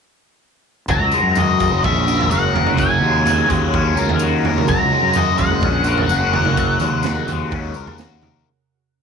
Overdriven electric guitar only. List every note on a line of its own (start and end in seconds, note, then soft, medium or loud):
0.90 2.78 F#3 medium
1.13 1.61 G#3 medium
1.38 2.30 F#4 medium
1.61 2.82 G#3 medium
1.85 3.74 C#4 medium
2.08 2.54 A#4 medium
2.31 3.26 F#4 medium
2.55 3.98 A#4 medium
2.79 4.69 F#3 medium
3.03 3.50 G#3 medium
3.26 4.23 F#4 medium
3.50 4.72 G#3 medium
3.75 5.63 C#4 medium
3.99 4.46 A#4 medium
4.23 5.17 F#4 medium
4.46 5.88 A#4 medium
4.69 6.58 F#3 medium
4.93 5.40 G#3 medium
5.17 6.11 F#4 medium
5.40 6.62 G#3 medium
5.64 6.82 C#4 medium
5.88 6.34 A#4 medium
6.11 7.05 F#4 medium
6.35 7.53 A#4 medium
6.59 7.77 F#3 medium
6.83 7.28 G#3 medium
7.07 7.98 F#4 medium
7.30 8.48 G#3 medium
7.53 8.48 C#4 medium
7.76 8.22 A#4 medium
8.00 8.47 F#4 medium
8.23 8.47 A#4 medium